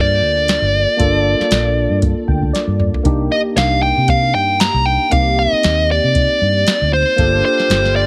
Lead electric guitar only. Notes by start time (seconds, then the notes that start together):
0.01 D5
3.32 D#5
3.57 F5
3.83 G5
4.10 F5
4.35 G5
4.60 A#5
4.86 G5
5.12 F5
5.39 D#5
5.91 D5
6.93 C5
7.45 C5
7.96 D5